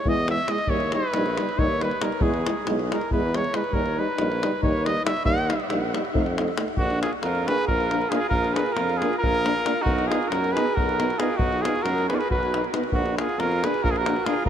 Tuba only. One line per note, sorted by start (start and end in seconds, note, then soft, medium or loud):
0.06 0.40 E2 loud
0.68 0.93 D#2 medium
1.13 1.38 A#1 medium
1.58 1.92 D#2 medium
2.21 2.46 E2 loud
2.66 2.91 B1 medium
3.12 3.46 E2 medium
3.73 3.98 D#2 medium
4.18 4.43 A#1 medium
4.63 4.97 D#2 medium
5.25 5.50 D#2 medium
5.70 5.95 A#1 medium
6.14 6.49 F2 medium
6.77 7.02 A#1 medium
7.23 7.48 F2 medium
7.69 8.03 A#1 medium
8.31 8.56 A#1 medium
8.77 9.02 F2 medium
9.23 9.57 A#1 medium
9.85 10.10 B1 medium
10.30 10.55 F#2 medium
10.76 11.11 B1 medium
11.39 11.64 B1 medium
11.84 12.09 F#2 medium
12.30 12.64 B1 medium
12.92 13.17 A#1 medium
13.38 13.63 F2 medium
13.83 14.17 A#1 medium
14.45 14.49 A#1 medium